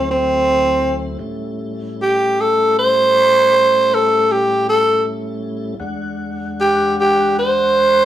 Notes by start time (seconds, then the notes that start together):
Already playing: D2 F#3 A3 C4 E4
0.11 C4
1.19 A2 G3 A3 C#4 E4
2.02 G4
2.40 A4
2.79 C5
3.94 A4
4.32 G4
4.69 A4
5.80 E2 G#3 D4 F#5
6.60 G4
7.00 G4
7.39 C5